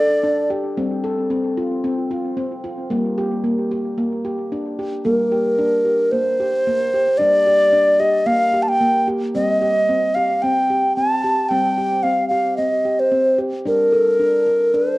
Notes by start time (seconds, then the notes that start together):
Already playing: G3 A4 D5
0.24 D4
0.50 G4
0.77 G3 C4
1.04 A4
1.30 C4
1.57 F4
1.84 C4
2.11 F4
2.37 C4
2.64 F4
2.90 G3 A#3
3.18 G4
3.44 A#3
3.71 G4
3.98 A#3
4.25 G4
4.52 D4
4.79 G4
5.05 G3 A#3 A#4
5.32 G4
5.59 D4
5.85 G4
6.12 A#3 C5
6.40 G4
6.67 A#3
6.94 G4
7.18 G3 D4 D5
7.47 G4
7.73 D4
8.00 G4 D#5
8.26 A#3 F5
8.53 G4
8.63 A5
8.69 G5
8.81 A#3
9.08 G4
9.35 G3 C4 D#5
9.62 G4
9.89 C4
10.15 G4 F5
10.42 C4 G5
10.70 G4
10.96 C4 A5
11.24 G4
11.49 G3 C4 G5
11.78 G4
12.03 C4 F5
12.29 G4 F5
12.57 C4 D#5
12.85 G4
13.00 C5
13.12 C4
13.38 G4
13.65 G3 D4 A#4
13.92 A4
14.20 D4
14.47 A4
14.74 D4 C5